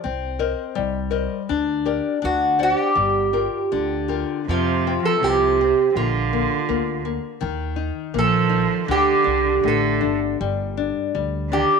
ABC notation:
X:1
M:2/4
L:1/16
Q:1/4=81
K:Gm
V:1 name="Twelve-string acoustic guitar"
z8 | z4 ^F2 G2- | G6 z2 | F3 A G4 |
F6 z2 | z4 A4 | G4 A3 z | z6 G2 |]
V:2 name="Nylon-string guitar"
C2 [Bce]2 G,2 [Bce]2 | D2 [GBd]2 D2 [cd^f]2 | G,2 [FGB]2 D,2 [FGB]2 | F,2 C2 F,2 C2 |
B,2 B,2 B,2 B,2 | E,2 E2 B,2 E2 | D,2 D2 A,2 D2 | G,2 D2 G,2 D2 |]
V:3 name="Cello" clef=bass
z8 | z8 | z8 | C,3 F, C,4 |
D,6 z2 | z4 F,4 | D,4 D,3 z | z6 E,2 |]
V:4 name="Upright bass" clef=bass
C,,4 C,,4 | D,,4 D,,4 | G,,,4 D,,4 | F,,4 C,,4 |
B,,,4 D,,4 | E,,4 B,,,4 | D,,2 C,,2 A,,,2 G,,,2 | G,,,4 D,,4 |]